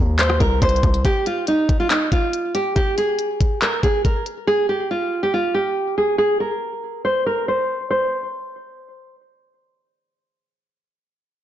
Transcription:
0.00 0.39 D#2 loud
0.00 0.15 A#4 medium
0.19 0.38 C5 medium
0.19 clap loud
0.19 closed hi-hat medium
0.30 cross-stick loud
0.40 0.61 C2 loud
0.40 0.60 A#4 medium
0.40 kick medium
0.40 closed hi-hat medium
0.62 0.82 C2 loud
0.62 1.02 C5 medium
0.62 kick loud
0.62 closed hi-hat medium
0.69 closed hi-hat medium
0.76 closed hi-hat soft
0.83 1.04 C2 loud
0.83 kick loud
0.83 closed hi-hat medium
0.94 closed hi-hat medium
1.05 1.24 G4 medium
1.05 kick loud
1.05 closed hi-hat medium
1.26 1.46 F4 medium
1.26 closed hi-hat medium
1.47 1.78 D#4 medium
1.47 closed hi-hat medium
1.69 kick loud
1.69 closed hi-hat medium
1.80 1.89 F4 medium
1.90 2.10 D#4 medium
1.90 clap loud
1.90 closed hi-hat medium
2.12 2.52 F4 medium
2.12 kick medium
2.12 closed hi-hat medium
2.33 closed hi-hat medium
2.55 2.74 G4 medium
2.55 closed hi-hat medium
2.76 2.95 G4 medium
2.76 kick loud
2.76 closed hi-hat medium
2.98 3.58 G#4 medium
2.98 closed hi-hat medium
3.19 closed hi-hat medium
3.41 kick loud
3.41 closed hi-hat medium
3.62 3.81 A#4 medium
3.62 clap loud
3.62 closed hi-hat medium
3.83 4.03 G#4 medium
3.83 kick medium
3.83 closed hi-hat medium
4.05 4.24 A#4 medium
4.05 kick medium
4.05 closed hi-hat medium
4.26 closed hi-hat medium
4.47 4.67 G#4 loud
4.69 4.88 G4 medium
4.91 5.21 F4 medium
5.23 5.33 G4 medium
5.34 5.53 F4 medium
5.54 5.95 G4 medium
5.98 6.17 G#4 medium
6.18 6.38 G#4 loud
6.40 7.01 A#4 medium
7.05 7.24 C5 medium
7.26 7.46 A#4 medium
7.48 7.88 C5 medium
7.91 9.15 C5 medium

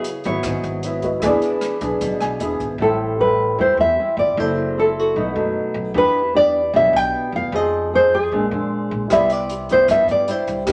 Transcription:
0.00 0.42 C#3 medium
0.00 0.99 E4 soft
0.00 1.00 F#4 soft
0.00 0.26 G#4 loud
0.00 1.01 B4 soft
0.00 1.02 D#5 soft
0.04 closed hi-hat soft
0.24 0.43 G#1 medium
0.24 0.81 F#3 medium
0.24 0.81 B3 medium
0.24 0.81 E4 medium
0.24 1.20 C#5 medium
0.24 closed hi-hat soft
0.43 0.53 G#1 medium
0.43 1.21 G#2 medium
0.43 kick medium
0.43 cross-stick medium
0.43 closed hi-hat soft
0.64 1.24 G#1 medium
0.64 closed hi-hat soft
0.83 1.09 F#3 medium
0.83 1.09 B3 medium
0.83 1.10 E4 medium
0.83 closed hi-hat soft
1.02 1.18 E4 soft
1.02 1.23 F#4 soft
1.02 1.22 B4 soft
1.02 1.24 D#5 soft
1.02 kick soft
1.02 closed hi-hat soft
1.20 1.41 E2 loud
1.20 1.99 E3 medium
1.20 1.79 B3 medium
1.20 1.79 D4 medium
1.20 2.75 E4 medium
1.20 2.77 G#4 soft
1.20 2.77 B4 medium
1.20 kick medium
1.20 cross-stick medium
1.20 closed hi-hat soft
1.24 1.79 G#4 medium
1.24 2.78 D5 medium
1.42 closed hi-hat soft
1.61 cross-stick medium
1.61 closed hi-hat soft
1.81 2.00 B1 medium
1.81 2.37 B3 medium
1.81 2.37 D4 medium
1.81 2.38 G#4 medium
1.81 kick medium
1.81 closed hi-hat soft
2.01 2.10 B1 medium
2.01 2.79 B2 soft
2.01 kick medium
2.01 closed hi-hat soft
2.21 2.39 B1 medium
2.21 2.39 G#5 soft
2.21 cross-stick medium
2.21 closed hi-hat soft
2.40 2.58 E1 medium
2.40 2.67 B3 medium
2.40 2.67 D4 soft
2.40 2.67 G#4 medium
2.40 2.77 E5 soft
2.40 closed hi-hat soft
2.60 2.78 G#1 medium
2.60 kick soft
2.60 closed hi-hat soft
2.78 3.54 A1 medium
2.78 3.57 A2 medium
2.78 3.16 G3 medium
2.78 3.17 C4 medium
2.78 3.17 E4 medium
2.78 3.22 A4 medium
3.19 3.55 G3 soft
3.19 3.56 C4 soft
3.19 3.56 E4 medium
3.19 3.60 B4 medium
3.58 3.77 E2 medium
3.58 4.35 E3 soft
3.58 3.95 G3 medium
3.58 3.95 C4 medium
3.58 3.95 E4 medium
3.58 3.78 C5 medium
3.77 3.96 E2 medium
3.77 4.19 E5 medium
3.99 4.35 G3 medium
3.99 4.35 C4 medium
3.99 4.35 E4 medium
4.17 4.36 G1 medium
4.17 4.40 D5 medium
4.37 5.12 F#1 loud
4.37 5.15 F#3 medium
4.37 4.74 C4 medium
4.37 4.74 E4 medium
4.37 4.74 A4 medium
4.37 4.79 C5 medium
4.78 5.15 C4 medium
4.78 5.15 E4 medium
4.78 5.15 A4 medium
4.78 4.99 A4 medium
4.99 5.77 F#4 medium
5.16 5.34 B1 medium
5.16 5.93 B2 soft
5.16 5.32 F#3 medium
5.16 5.33 A3 medium
5.16 5.33 D#4 medium
5.36 5.54 F#2 medium
5.36 5.92 F#3 medium
5.36 5.92 A3 medium
5.36 5.92 D#4 medium
5.74 5.93 B1 medium
5.94 6.69 E2 loud
5.94 6.71 E3 medium
5.94 6.20 B3 medium
5.94 6.20 D4 medium
5.94 6.20 G4 medium
5.94 6.36 B4 loud
6.34 6.59 B3 soft
6.34 6.60 D4 medium
6.34 6.60 G4 medium
6.34 6.76 D5 loud
6.73 6.92 B1 loud
6.73 7.50 B2 medium
6.73 7.27 B3 medium
6.73 7.27 D4 medium
6.73 7.27 G4 medium
6.73 6.96 E5 medium
6.93 7.11 B1 medium
6.93 7.35 G5 loud
7.32 7.51 E2 medium
7.32 7.55 F5 medium
7.52 8.27 F2 loud
7.52 8.29 F3 medium
7.52 7.89 C4 medium
7.52 7.89 D#4 medium
7.52 7.89 G#4 medium
7.52 7.94 D#5 loud
7.93 8.19 C4 medium
7.93 8.19 D#4 medium
7.93 8.19 G#4 medium
7.93 8.14 C5 medium
8.15 8.88 G#4 loud
8.32 8.50 A#1 medium
8.32 9.08 A#2 medium
8.32 8.43 G#3 medium
8.32 8.44 C4 medium
8.32 8.44 D4 medium
8.51 8.69 F2 medium
8.51 9.07 G#3 medium
8.51 9.07 C4 medium
8.51 9.07 D4 medium
8.91 9.09 A#1 medium
9.08 9.85 C2 medium
9.08 9.87 C3 medium
9.08 9.49 G3 medium
9.08 9.50 B3 medium
9.08 10.63 E4 soft
9.08 9.50 E4 medium
9.08 10.64 G4 soft
9.08 kick medium
9.08 cross-stick medium
9.08 closed hi-hat soft
9.12 10.66 D5 medium
9.12 9.32 E5 medium
9.12 10.65 B5 soft
9.30 9.71 D5 medium
9.30 closed hi-hat soft
9.50 closed hi-hat soft
9.69 10.25 G3 medium
9.69 10.26 B3 medium
9.69 10.26 E4 medium
9.69 9.91 C5 medium
9.69 kick soft
9.69 closed hi-hat soft
9.88 10.07 G2 loud
9.88 10.66 G2 medium
9.88 10.10 E5 medium
9.88 kick medium
9.88 cross-stick medium
9.88 closed hi-hat soft
10.08 10.26 G2 medium
10.08 10.30 D5 medium
10.08 closed hi-hat soft
10.28 10.64 G3 medium
10.28 10.64 E4 medium
10.28 10.69 C5 medium
10.28 closed hi-hat soft
10.47 10.66 C2 medium
10.47 kick soft
10.47 closed hi-hat soft
10.66 10.72 E2 loud
10.66 10.72 E3 medium
10.66 10.72 A#3 medium
10.66 10.72 A#3 soft
10.66 10.72 D4 medium
10.66 10.72 G4 soft
10.66 10.72 G4 medium
10.66 kick medium
10.66 cross-stick medium
10.66 closed hi-hat soft

